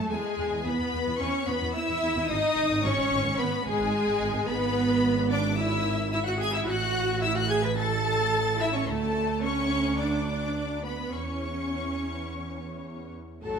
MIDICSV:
0, 0, Header, 1, 6, 480
1, 0, Start_track
1, 0, Tempo, 547945
1, 102, Time_signature, 4, 2, 24, 8
1, 7784, Tempo, 558140
1, 9224, Tempo, 573614
1, 11762, End_track
2, 0, Start_track
2, 0, Title_t, "Violin section"
2, 0, Program_c, 0, 48
2, 91, Note_on_c, 0, 80, 108
2, 563, Note_off_c, 0, 80, 0
2, 572, Note_on_c, 0, 83, 120
2, 1038, Note_on_c, 0, 85, 117
2, 1053, Note_off_c, 0, 83, 0
2, 1286, Note_off_c, 0, 85, 0
2, 1294, Note_on_c, 0, 83, 127
2, 1518, Note_on_c, 0, 88, 125
2, 1534, Note_off_c, 0, 83, 0
2, 1992, Note_off_c, 0, 88, 0
2, 2002, Note_on_c, 0, 87, 127
2, 2485, Note_off_c, 0, 87, 0
2, 2485, Note_on_c, 0, 85, 127
2, 2969, Note_off_c, 0, 85, 0
2, 2971, Note_on_c, 0, 83, 120
2, 3201, Note_on_c, 0, 80, 127
2, 3210, Note_off_c, 0, 83, 0
2, 3918, Note_on_c, 0, 83, 127
2, 3920, Note_off_c, 0, 80, 0
2, 4646, Note_on_c, 0, 86, 120
2, 4649, Note_off_c, 0, 83, 0
2, 4888, Note_off_c, 0, 86, 0
2, 4890, Note_on_c, 0, 88, 116
2, 5356, Note_off_c, 0, 88, 0
2, 5367, Note_on_c, 0, 88, 117
2, 5417, Note_off_c, 0, 88, 0
2, 5495, Note_on_c, 0, 90, 104
2, 5543, Note_off_c, 0, 90, 0
2, 5613, Note_on_c, 0, 92, 126
2, 5731, Note_off_c, 0, 92, 0
2, 5735, Note_on_c, 0, 88, 103
2, 5783, Note_off_c, 0, 88, 0
2, 5850, Note_on_c, 0, 90, 125
2, 6323, Note_off_c, 0, 90, 0
2, 6327, Note_on_c, 0, 88, 122
2, 6448, Note_off_c, 0, 88, 0
2, 6460, Note_on_c, 0, 90, 126
2, 6569, Note_on_c, 0, 92, 116
2, 6574, Note_off_c, 0, 90, 0
2, 6691, Note_off_c, 0, 92, 0
2, 6707, Note_on_c, 0, 95, 120
2, 6816, Note_on_c, 0, 93, 127
2, 6820, Note_off_c, 0, 95, 0
2, 7529, Note_off_c, 0, 93, 0
2, 7533, Note_on_c, 0, 88, 121
2, 7659, Note_off_c, 0, 88, 0
2, 7666, Note_on_c, 0, 85, 104
2, 7786, Note_off_c, 0, 85, 0
2, 7787, Note_on_c, 0, 81, 120
2, 8264, Note_off_c, 0, 81, 0
2, 8266, Note_on_c, 0, 85, 123
2, 8732, Note_off_c, 0, 85, 0
2, 8745, Note_on_c, 0, 86, 98
2, 9462, Note_on_c, 0, 83, 99
2, 9465, Note_off_c, 0, 86, 0
2, 9697, Note_on_c, 0, 85, 95
2, 9700, Note_off_c, 0, 83, 0
2, 11386, Note_off_c, 0, 85, 0
2, 11624, Note_on_c, 0, 81, 82
2, 11762, Note_off_c, 0, 81, 0
2, 11762, End_track
3, 0, Start_track
3, 0, Title_t, "Violin section"
3, 0, Program_c, 1, 48
3, 0, Note_on_c, 1, 69, 87
3, 90, Note_on_c, 1, 68, 98
3, 103, Note_off_c, 1, 69, 0
3, 573, Note_off_c, 1, 68, 0
3, 580, Note_on_c, 1, 71, 91
3, 1048, Note_on_c, 1, 73, 96
3, 1057, Note_off_c, 1, 71, 0
3, 1289, Note_on_c, 1, 71, 90
3, 1292, Note_off_c, 1, 73, 0
3, 1531, Note_off_c, 1, 71, 0
3, 1534, Note_on_c, 1, 76, 102
3, 2002, Note_on_c, 1, 75, 107
3, 2010, Note_off_c, 1, 76, 0
3, 2475, Note_off_c, 1, 75, 0
3, 2491, Note_on_c, 1, 73, 105
3, 2962, Note_off_c, 1, 73, 0
3, 2965, Note_on_c, 1, 71, 103
3, 3197, Note_on_c, 1, 68, 113
3, 3207, Note_off_c, 1, 71, 0
3, 3904, Note_off_c, 1, 68, 0
3, 3917, Note_on_c, 1, 71, 108
3, 4634, Note_off_c, 1, 71, 0
3, 4644, Note_on_c, 1, 74, 104
3, 4714, Note_off_c, 1, 74, 0
3, 4894, Note_on_c, 1, 76, 98
3, 5357, Note_off_c, 1, 76, 0
3, 5368, Note_on_c, 1, 76, 107
3, 5489, Note_off_c, 1, 76, 0
3, 5494, Note_on_c, 1, 78, 95
3, 5608, Note_on_c, 1, 80, 107
3, 5614, Note_off_c, 1, 78, 0
3, 5731, Note_off_c, 1, 80, 0
3, 5732, Note_on_c, 1, 76, 99
3, 5780, Note_off_c, 1, 76, 0
3, 5854, Note_on_c, 1, 78, 104
3, 6325, Note_off_c, 1, 78, 0
3, 6326, Note_on_c, 1, 76, 104
3, 6376, Note_off_c, 1, 76, 0
3, 6454, Note_on_c, 1, 78, 92
3, 6502, Note_off_c, 1, 78, 0
3, 6572, Note_on_c, 1, 80, 92
3, 6690, Note_off_c, 1, 80, 0
3, 6697, Note_on_c, 1, 83, 88
3, 6813, Note_on_c, 1, 81, 115
3, 6815, Note_off_c, 1, 83, 0
3, 7528, Note_off_c, 1, 81, 0
3, 7542, Note_on_c, 1, 76, 90
3, 7654, Note_on_c, 1, 73, 92
3, 7661, Note_off_c, 1, 76, 0
3, 7774, Note_on_c, 1, 69, 93
3, 7780, Note_off_c, 1, 73, 0
3, 8258, Note_off_c, 1, 69, 0
3, 8260, Note_on_c, 1, 73, 101
3, 8735, Note_on_c, 1, 74, 82
3, 8739, Note_off_c, 1, 73, 0
3, 9449, Note_on_c, 1, 71, 78
3, 9460, Note_off_c, 1, 74, 0
3, 9698, Note_off_c, 1, 71, 0
3, 9701, Note_on_c, 1, 73, 72
3, 11355, Note_off_c, 1, 73, 0
3, 11623, Note_on_c, 1, 69, 100
3, 11762, Note_off_c, 1, 69, 0
3, 11762, End_track
4, 0, Start_track
4, 0, Title_t, "Cello section"
4, 0, Program_c, 2, 48
4, 0, Note_on_c, 2, 57, 91
4, 99, Note_on_c, 2, 56, 82
4, 102, Note_off_c, 2, 57, 0
4, 567, Note_off_c, 2, 56, 0
4, 577, Note_on_c, 2, 59, 90
4, 1045, Note_off_c, 2, 59, 0
4, 1055, Note_on_c, 2, 61, 104
4, 1295, Note_off_c, 2, 61, 0
4, 1297, Note_on_c, 2, 59, 96
4, 1533, Note_on_c, 2, 64, 111
4, 1536, Note_off_c, 2, 59, 0
4, 2006, Note_on_c, 2, 63, 98
4, 2010, Note_off_c, 2, 64, 0
4, 2477, Note_off_c, 2, 63, 0
4, 2490, Note_on_c, 2, 61, 112
4, 2971, Note_off_c, 2, 61, 0
4, 2972, Note_on_c, 2, 59, 113
4, 3206, Note_on_c, 2, 56, 97
4, 3210, Note_off_c, 2, 59, 0
4, 3909, Note_off_c, 2, 56, 0
4, 3924, Note_on_c, 2, 59, 103
4, 4638, Note_off_c, 2, 59, 0
4, 4646, Note_on_c, 2, 62, 101
4, 4716, Note_off_c, 2, 62, 0
4, 4892, Note_on_c, 2, 64, 91
4, 5365, Note_off_c, 2, 64, 0
4, 5376, Note_on_c, 2, 64, 114
4, 5424, Note_off_c, 2, 64, 0
4, 5498, Note_on_c, 2, 66, 99
4, 5610, Note_on_c, 2, 68, 107
4, 5614, Note_off_c, 2, 66, 0
4, 5731, Note_on_c, 2, 64, 95
4, 5732, Note_off_c, 2, 68, 0
4, 5846, Note_on_c, 2, 66, 106
4, 5853, Note_off_c, 2, 64, 0
4, 6330, Note_off_c, 2, 66, 0
4, 6330, Note_on_c, 2, 64, 105
4, 6452, Note_off_c, 2, 64, 0
4, 6453, Note_on_c, 2, 66, 91
4, 6571, Note_off_c, 2, 66, 0
4, 6574, Note_on_c, 2, 68, 104
4, 6622, Note_off_c, 2, 68, 0
4, 6687, Note_on_c, 2, 71, 94
4, 6737, Note_off_c, 2, 71, 0
4, 6807, Note_on_c, 2, 69, 109
4, 7524, Note_off_c, 2, 69, 0
4, 7541, Note_on_c, 2, 64, 100
4, 7660, Note_on_c, 2, 61, 92
4, 7662, Note_off_c, 2, 64, 0
4, 7781, Note_off_c, 2, 61, 0
4, 7785, Note_on_c, 2, 57, 91
4, 8258, Note_on_c, 2, 61, 99
4, 8263, Note_off_c, 2, 57, 0
4, 8728, Note_off_c, 2, 61, 0
4, 8739, Note_on_c, 2, 62, 83
4, 9448, Note_off_c, 2, 62, 0
4, 9462, Note_on_c, 2, 59, 77
4, 9700, Note_off_c, 2, 59, 0
4, 9706, Note_on_c, 2, 61, 67
4, 11391, Note_off_c, 2, 61, 0
4, 11632, Note_on_c, 2, 45, 59
4, 11762, Note_off_c, 2, 45, 0
4, 11762, End_track
5, 0, Start_track
5, 0, Title_t, "Viola section"
5, 0, Program_c, 3, 48
5, 97, Note_on_c, 3, 56, 103
5, 573, Note_on_c, 3, 59, 102
5, 576, Note_off_c, 3, 56, 0
5, 1043, Note_off_c, 3, 59, 0
5, 1053, Note_on_c, 3, 61, 100
5, 1289, Note_off_c, 3, 61, 0
5, 1290, Note_on_c, 3, 59, 90
5, 1527, Note_off_c, 3, 59, 0
5, 1533, Note_on_c, 3, 64, 97
5, 2005, Note_on_c, 3, 63, 122
5, 2010, Note_off_c, 3, 64, 0
5, 2487, Note_off_c, 3, 63, 0
5, 2489, Note_on_c, 3, 61, 111
5, 2961, Note_off_c, 3, 61, 0
5, 2972, Note_on_c, 3, 59, 101
5, 3210, Note_off_c, 3, 59, 0
5, 3213, Note_on_c, 3, 56, 113
5, 3912, Note_off_c, 3, 56, 0
5, 3927, Note_on_c, 3, 59, 121
5, 4654, Note_off_c, 3, 59, 0
5, 4654, Note_on_c, 3, 62, 106
5, 4897, Note_off_c, 3, 62, 0
5, 4897, Note_on_c, 3, 64, 102
5, 5362, Note_off_c, 3, 64, 0
5, 5372, Note_on_c, 3, 64, 95
5, 5421, Note_off_c, 3, 64, 0
5, 5491, Note_on_c, 3, 66, 99
5, 5610, Note_off_c, 3, 66, 0
5, 5612, Note_on_c, 3, 68, 112
5, 5730, Note_on_c, 3, 64, 104
5, 5731, Note_off_c, 3, 68, 0
5, 5849, Note_on_c, 3, 66, 111
5, 5850, Note_off_c, 3, 64, 0
5, 6331, Note_off_c, 3, 66, 0
5, 6335, Note_on_c, 3, 64, 116
5, 6454, Note_off_c, 3, 64, 0
5, 6454, Note_on_c, 3, 66, 100
5, 6573, Note_off_c, 3, 66, 0
5, 6574, Note_on_c, 3, 68, 104
5, 6691, Note_on_c, 3, 71, 95
5, 6693, Note_off_c, 3, 68, 0
5, 6739, Note_off_c, 3, 71, 0
5, 6810, Note_on_c, 3, 69, 112
5, 7526, Note_off_c, 3, 69, 0
5, 7540, Note_on_c, 3, 64, 96
5, 7660, Note_off_c, 3, 64, 0
5, 7660, Note_on_c, 3, 61, 95
5, 7709, Note_off_c, 3, 61, 0
5, 7786, Note_on_c, 3, 57, 99
5, 8254, Note_off_c, 3, 57, 0
5, 8264, Note_on_c, 3, 61, 114
5, 8741, Note_off_c, 3, 61, 0
5, 8743, Note_on_c, 3, 62, 89
5, 9464, Note_off_c, 3, 62, 0
5, 9469, Note_on_c, 3, 59, 84
5, 9703, Note_off_c, 3, 59, 0
5, 9710, Note_on_c, 3, 61, 80
5, 11393, Note_off_c, 3, 61, 0
5, 11629, Note_on_c, 3, 54, 70
5, 11762, Note_off_c, 3, 54, 0
5, 11762, End_track
6, 0, Start_track
6, 0, Title_t, "Double bass section"
6, 0, Program_c, 4, 48
6, 92, Note_on_c, 4, 40, 104
6, 142, Note_off_c, 4, 40, 0
6, 329, Note_on_c, 4, 40, 70
6, 378, Note_off_c, 4, 40, 0
6, 450, Note_on_c, 4, 40, 106
6, 499, Note_off_c, 4, 40, 0
6, 569, Note_on_c, 4, 40, 68
6, 619, Note_off_c, 4, 40, 0
6, 692, Note_on_c, 4, 40, 68
6, 741, Note_off_c, 4, 40, 0
6, 814, Note_on_c, 4, 40, 96
6, 862, Note_off_c, 4, 40, 0
6, 932, Note_on_c, 4, 40, 73
6, 981, Note_off_c, 4, 40, 0
6, 1051, Note_on_c, 4, 40, 92
6, 1099, Note_off_c, 4, 40, 0
6, 1289, Note_on_c, 4, 40, 76
6, 1338, Note_off_c, 4, 40, 0
6, 1411, Note_on_c, 4, 40, 102
6, 1460, Note_off_c, 4, 40, 0
6, 1654, Note_on_c, 4, 40, 73
6, 1702, Note_off_c, 4, 40, 0
6, 1767, Note_on_c, 4, 40, 111
6, 1816, Note_off_c, 4, 40, 0
6, 1889, Note_on_c, 4, 40, 80
6, 1937, Note_off_c, 4, 40, 0
6, 2011, Note_on_c, 4, 32, 115
6, 2058, Note_off_c, 4, 32, 0
6, 2247, Note_on_c, 4, 32, 77
6, 2295, Note_off_c, 4, 32, 0
6, 2368, Note_on_c, 4, 32, 115
6, 2416, Note_off_c, 4, 32, 0
6, 2492, Note_on_c, 4, 32, 79
6, 2540, Note_off_c, 4, 32, 0
6, 2608, Note_on_c, 4, 32, 77
6, 2657, Note_off_c, 4, 32, 0
6, 2728, Note_on_c, 4, 32, 112
6, 2776, Note_off_c, 4, 32, 0
6, 2847, Note_on_c, 4, 32, 76
6, 2896, Note_off_c, 4, 32, 0
6, 2969, Note_on_c, 4, 32, 110
6, 3017, Note_off_c, 4, 32, 0
6, 3210, Note_on_c, 4, 32, 78
6, 3257, Note_off_c, 4, 32, 0
6, 3327, Note_on_c, 4, 32, 120
6, 3375, Note_off_c, 4, 32, 0
6, 3566, Note_on_c, 4, 32, 76
6, 3614, Note_off_c, 4, 32, 0
6, 3684, Note_on_c, 4, 32, 108
6, 3732, Note_off_c, 4, 32, 0
6, 3802, Note_on_c, 4, 32, 77
6, 3851, Note_off_c, 4, 32, 0
6, 3925, Note_on_c, 4, 32, 110
6, 5820, Note_off_c, 4, 32, 0
6, 5850, Note_on_c, 4, 33, 102
6, 7747, Note_off_c, 4, 33, 0
6, 7784, Note_on_c, 4, 38, 86
6, 9671, Note_off_c, 4, 38, 0
6, 9706, Note_on_c, 4, 40, 78
6, 11425, Note_off_c, 4, 40, 0
6, 11631, Note_on_c, 4, 33, 75
6, 11762, Note_off_c, 4, 33, 0
6, 11762, End_track
0, 0, End_of_file